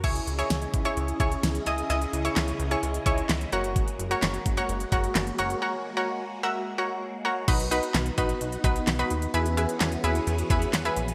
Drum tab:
CC |x---------------|----------------|----------------|----------------|
HH |xxxxxxxxxxxxxxxx|xxxxxxxxxxxxxxxx|xxxxxxxxxxxxxxxx|----------------|
CP |----------------|----x-------x---|----x-------x---|----------------|
SD |----o-------o---|----o-------o---|----o-------o---|----------------|
BD |o-----o---o-----|----------o-----|o-----o---o-----|----------------|

CC |x---------------|----------------|
HH |xxxxxxxxxxxxxxxx|xxxxxxxxxxxxxxxx|
CP |----x-------x---|----x-------x---|
SD |----o-------o---|----o-------o---|
BD |o-----o---o-----|----------o-----|